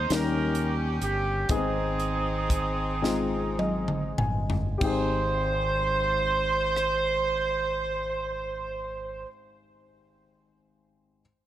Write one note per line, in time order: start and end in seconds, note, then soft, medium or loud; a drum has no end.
0.00 0.11 D#3 medium
0.00 0.14 G#3 medium
0.00 0.14 C4 medium
0.00 0.11 D#4 medium
0.00 0.13 C5 medium
0.10 0.98 D#2 medium
0.10 1.46 D#3 medium
0.10 0.95 G3 medium
0.10 0.95 C#4 medium
0.10 1.47 C#4 medium
0.10 0.96 D#4 medium
0.10 1.02 G4 medium
0.10 0.96 A#4 medium
0.10 0.74 A#4 medium
0.10 snare loud
0.10 closed hi-hat medium
0.55 closed hi-hat soft
1.01 1.46 G1 medium
1.01 1.47 G4 medium
1.01 closed hi-hat medium
1.49 4.14 G#1 medium
1.49 3.00 G#2 medium
1.49 2.43 G#3 medium
1.49 1.57 B3 soft
1.49 4.16 C4 medium
1.49 2.43 D#4 medium
1.49 4.16 D#4 medium
1.49 2.43 G#4 medium
1.49 4.19 G#4 medium
1.49 kick medium
1.49 closed hi-hat medium
1.56 2.46 C4 medium
2.00 closed hi-hat soft
2.50 kick medium
2.50 closed hi-hat medium
3.02 4.09 G#3 medium
3.02 4.09 C4 medium
3.02 4.10 D#4 medium
3.02 4.10 F4 medium
3.02 snare medium
3.59 4.14 D#5 medium
3.59 high tom medium
3.88 mid tom medium
4.18 4.77 G1 medium
4.18 4.77 G#5 medium
4.18 mid tom medium
4.50 floor tom medium
4.78 9.24 G#1 medium
4.78 9.23 C4 medium
4.78 9.21 G4 medium
4.78 kick medium
4.78 crash medium
4.83 9.25 D#4 medium
4.83 9.27 G#4 medium
4.83 9.27 C5 medium
6.76 cross-stick medium